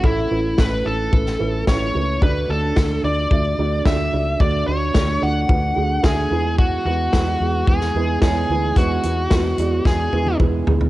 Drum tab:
HH |----------------|----------------|----------------|----------------|
SD |----o----o--o---|----o-------o---|----o-------o---|----o----o--o---|
T1 |----------------|----------------|----------------|----------------|
T2 |----------------|----------------|----------------|----------------|
FT |----------------|----------------|----------------|----------------|
BD |o---o---o---o---|o---o---o---o---|o---o---o---o---|o---o---o---o---|

HH |x-x-x-x---------|
SD |----o---o-------|
T1 |----------oo----|
T2 |------------o---|
FT |--------------oo|
BD |o---o---o---o---|